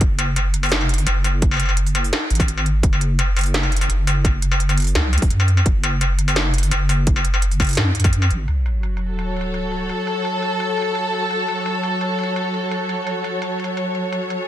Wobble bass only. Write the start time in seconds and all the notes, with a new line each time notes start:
0.01 F#1
1.07 F#1
2.31 G#1
2.83 F#1
3.89 F#1
4.95 C#2
5.30 F#2
5.66 F#1
6.72 F#1
7.78 F#2
8.31 G#1